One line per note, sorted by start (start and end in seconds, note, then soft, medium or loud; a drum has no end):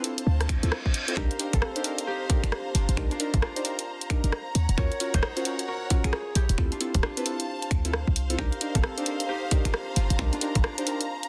0.00 1.53 C4 medium
0.00 2.13 D4 medium
0.00 2.34 F4 loud
0.00 0.20 G#4 medium
0.00 4.55 C5 medium
0.00 4.55 F5 medium
0.04 0.22 C4 medium
0.04 0.22 E4 medium
0.04 0.22 F4 medium
0.04 0.22 A4 medium
0.04 1.17 A5 medium
0.04 open hi-hat loud
0.18 closed hi-hat medium
0.27 0.60 D2 medium
0.27 reverse cymbal medium
0.41 cross-stick medium
0.41 closed hi-hat soft
0.49 finger snap medium
0.49 kick loud
0.49 open hi-hat loud
0.63 0.71 D2 medium
0.63 0.71 C4 loud
0.63 0.71 E4 medium
0.63 0.71 F4 medium
0.63 0.71 A4 loud
0.63 closed hi-hat medium
0.72 cross-stick loud
0.86 kick medium
0.94 open hi-hat loud
1.08 1.16 C4 medium
1.08 1.16 E4 medium
1.08 1.16 F4 medium
1.08 1.16 A4 loud
1.08 closed hi-hat medium
1.17 1.29 C2 loud
1.17 1.29 D4 medium
1.17 1.29 D#4 medium
1.17 2.07 G4 medium
1.17 1.29 G4 medium
1.17 1.29 A#4 loud
1.17 1.60 A#4 medium
1.17 finger snap medium
1.17 kick loud
1.31 6.58 A#5 medium
1.31 closed hi-hat soft
1.39 1.52 D4 medium
1.39 1.52 D#4 medium
1.39 1.52 G4 medium
1.39 1.52 A#4 loud
1.39 open hi-hat loud
1.53 1.61 G1 medium
1.53 4.53 C4 medium
1.53 3.73 A4 medium
1.53 kick loud
1.53 closed hi-hat medium
1.62 cross-stick loud
1.76 1.83 D4 loud
1.76 1.83 D#4 medium
1.76 1.83 G4 medium
1.76 1.83 C5 loud
1.76 closed hi-hat medium
1.84 2.02 D4 medium
1.84 2.02 D#4 medium
1.84 2.02 G4 medium
1.84 2.02 A#4 medium
1.84 open hi-hat loud
1.98 closed hi-hat medium
2.07 2.49 D#4 medium
2.07 4.43 G4 loud
2.29 2.41 D4 medium
2.29 2.41 D#4 medium
2.29 2.41 G4 medium
2.29 2.41 A#4 loud
2.29 kick loud
2.29 open hi-hat loud
2.43 2.51 G1 medium
2.43 2.74 D4 medium
2.43 2.51 D4 medium
2.43 2.51 D#4 medium
2.43 2.74 F4 medium
2.43 2.51 A#4 medium
2.43 finger snap medium
2.43 closed hi-hat medium
2.52 cross-stick loud
2.75 2.87 G1 medium
2.75 3.11 D4 medium
2.75 3.11 F4 medium
2.75 open hi-hat loud
2.89 2.96 G1 medium
2.89 closed hi-hat medium
2.97 3.10 C2 loud
2.97 3.10 D4 medium
2.97 3.10 D#4 medium
2.97 3.10 G4 medium
2.97 3.10 A#4 loud
2.97 finger snap medium
2.97 kick loud
3.11 3.42 D4 medium
3.11 3.42 F4 medium
3.11 closed hi-hat soft
3.20 3.32 D4 medium
3.20 3.32 D#4 medium
3.20 3.32 G4 medium
3.20 3.32 A#4 loud
3.20 open hi-hat loud
3.34 3.41 G1 medium
3.34 kick loud
3.34 closed hi-hat medium
3.42 4.84 D4 medium
3.42 5.74 F4 loud
3.42 cross-stick loud
3.56 3.64 D4 loud
3.56 3.64 D#4 medium
3.56 3.64 G4 medium
3.56 3.64 C5 loud
3.56 closed hi-hat medium
3.65 3.83 D4 medium
3.65 3.83 D#4 medium
3.65 3.83 G4 medium
3.65 3.83 A#4 medium
3.65 open hi-hat loud
3.79 closed hi-hat medium
4.01 closed hi-hat soft
4.10 4.22 D4 medium
4.10 4.22 D#4 medium
4.10 4.22 G4 medium
4.10 4.22 A#4 loud
4.10 finger snap medium
4.10 kick loud
4.10 open hi-hat loud
4.24 4.32 G1 medium
4.24 4.32 D4 medium
4.24 4.32 D#4 medium
4.24 4.32 G4 medium
4.24 4.32 A#4 medium
4.24 closed hi-hat medium
4.33 cross-stick loud
4.55 4.67 D#2 medium
4.55 6.58 C#5 medium
4.55 open hi-hat loud
4.59 6.58 F#5 medium
4.69 4.77 D#1 loud
4.69 closed hi-hat medium
4.78 4.90 D#2 loud
4.78 4.90 C#4 medium
4.78 4.90 F4 medium
4.78 4.90 F#4 medium
4.78 4.90 A#4 loud
4.78 5.68 A#4 medium
4.78 5.21 C#5 loud
4.78 finger snap medium
4.78 kick loud
4.92 closed hi-hat soft
5.00 5.13 C#4 medium
5.00 5.13 F4 medium
5.00 5.13 F#4 medium
5.00 5.13 A#4 loud
5.00 open hi-hat loud
5.14 5.22 D#1 medium
5.14 6.41 D#4 medium
5.14 7.13 C5 medium
5.14 kick loud
5.14 closed hi-hat medium
5.23 cross-stick loud
5.37 5.44 C#4 loud
5.37 5.44 F4 medium
5.37 5.44 F#4 medium
5.37 5.44 C5 loud
5.37 closed hi-hat soft
5.45 5.63 C#4 medium
5.45 5.63 F4 medium
5.45 5.63 F#4 medium
5.45 5.63 A#4 medium
5.45 open hi-hat loud
5.59 closed hi-hat medium
5.68 6.10 F#4 medium
5.68 7.80 A#4 loud
5.90 6.02 C#4 medium
5.90 6.02 F4 medium
5.90 6.02 F#4 medium
5.90 6.02 A#4 loud
5.90 kick loud
5.90 open hi-hat loud
6.04 6.12 A#1 medium
6.04 6.12 C#4 medium
6.04 6.41 F4 medium
6.04 6.12 F4 medium
6.04 6.12 F#4 medium
6.04 6.42 G#4 medium
6.04 6.12 A#4 medium
6.04 finger snap medium
6.04 closed hi-hat medium
6.13 cross-stick loud
6.35 6.48 A#1 medium
6.35 6.78 E4 medium
6.35 8.38 G4 medium
6.35 open hi-hat loud
6.49 6.57 D#1 medium
6.49 closed hi-hat medium
6.58 6.70 D2 loud
6.58 6.71 C4 medium
6.58 6.71 E4 medium
6.58 6.71 F4 medium
6.58 6.71 A4 loud
6.58 11.29 C5 medium
6.58 finger snap medium
6.58 kick loud
6.71 7.02 D4 medium
6.71 7.03 F4 loud
6.71 11.29 F5 loud
6.71 closed hi-hat soft
6.80 6.93 C4 medium
6.80 6.93 E4 medium
6.80 6.93 F4 medium
6.80 6.93 A4 loud
6.80 open hi-hat loud
6.93 7.02 D1 medium
6.93 8.38 A5 medium
6.93 kick loud
6.93 closed hi-hat medium
7.03 9.35 D4 medium
7.03 9.56 F4 loud
7.03 cross-stick loud
7.17 7.24 C4 loud
7.17 7.25 E4 medium
7.17 7.24 F4 medium
7.17 7.25 B4 loud
7.17 closed hi-hat medium
7.26 7.43 C4 medium
7.26 7.43 E4 medium
7.26 7.43 F4 medium
7.26 7.43 A4 medium
7.26 open hi-hat loud
7.40 closed hi-hat medium
7.62 closed hi-hat soft
7.71 8.05 D2 loud
7.71 finger snap medium
7.71 kick loud
7.71 open hi-hat loud
7.85 7.93 C4 loud
7.85 7.93 E4 medium
7.85 7.93 F4 medium
7.85 7.92 A4 loud
7.85 closed hi-hat medium
7.94 cross-stick loud
8.07 8.37 C2 medium
8.07 kick medium
8.16 open hi-hat loud
8.30 8.37 C4 medium
8.30 8.37 E4 medium
8.30 8.37 F4 medium
8.30 8.37 A4 loud
8.30 closed hi-hat medium
8.38 8.51 C2 loud
8.38 8.51 D4 medium
8.38 8.51 D#4 medium
8.38 9.28 G4 medium
8.38 8.51 G4 medium
8.38 8.51 A#4 loud
8.38 8.81 A#4 medium
8.38 finger snap medium
8.38 kick loud
8.52 11.29 A#5 medium
8.52 closed hi-hat soft
8.61 8.74 D4 medium
8.61 8.74 D#4 medium
8.61 8.74 G4 medium
8.61 8.74 A#4 loud
8.61 open hi-hat loud
8.75 8.83 G1 medium
8.75 11.29 C4 medium
8.75 10.95 A4 medium
8.75 kick loud
8.75 closed hi-hat medium
8.84 cross-stick loud
8.98 9.05 D4 loud
8.98 9.05 D#4 medium
8.98 9.05 G4 medium
8.98 9.05 C5 loud
8.98 closed hi-hat medium
9.06 9.24 D4 medium
9.06 9.24 D#4 medium
9.06 9.24 G4 medium
9.06 9.24 A#4 medium
9.06 open hi-hat loud
9.20 closed hi-hat medium
9.29 9.71 D#4 medium
9.29 11.29 G4 loud
9.51 9.63 D4 medium
9.51 9.63 D#4 medium
9.51 9.63 G4 medium
9.51 9.63 A#4 medium
9.51 kick loud
9.51 open hi-hat loud
9.65 9.73 G1 medium
9.65 9.96 D4 medium
9.65 9.73 D4 medium
9.65 9.73 D#4 medium
9.65 9.96 F4 medium
9.65 9.73 G4 medium
9.65 9.73 A#4 medium
9.65 finger snap medium
9.65 closed hi-hat medium
9.74 cross-stick loud
9.96 10.09 G1 medium
9.96 10.32 D4 medium
9.96 10.33 F4 loud
9.96 open hi-hat loud
10.10 10.18 G1 loud
10.10 closed hi-hat medium
10.19 10.31 C2 loud
10.19 10.31 D4 medium
10.19 10.31 D#4 medium
10.19 10.31 G4 medium
10.19 10.31 A#4 loud
10.19 finger snap medium
10.19 kick loud
10.33 10.63 D4 medium
10.33 10.64 F4 medium
10.33 closed hi-hat soft
10.41 10.54 D4 medium
10.41 10.54 D#4 medium
10.41 10.54 G4 medium
10.41 10.54 A#4 loud
10.41 open hi-hat loud
10.55 10.63 G1 medium
10.55 kick loud
10.55 closed hi-hat medium
10.64 11.29 D4 medium
10.64 11.29 F4 medium
10.64 cross-stick loud
10.78 10.85 D4 loud
10.78 10.85 D#4 medium
10.78 10.85 G4 medium
10.78 10.85 C5 loud
10.78 closed hi-hat medium
10.87 11.04 D4 medium
10.87 11.04 D#4 medium
10.87 11.04 G4 medium
10.87 11.04 A#4 medium
10.87 open hi-hat loud
11.01 closed hi-hat medium
11.23 closed hi-hat soft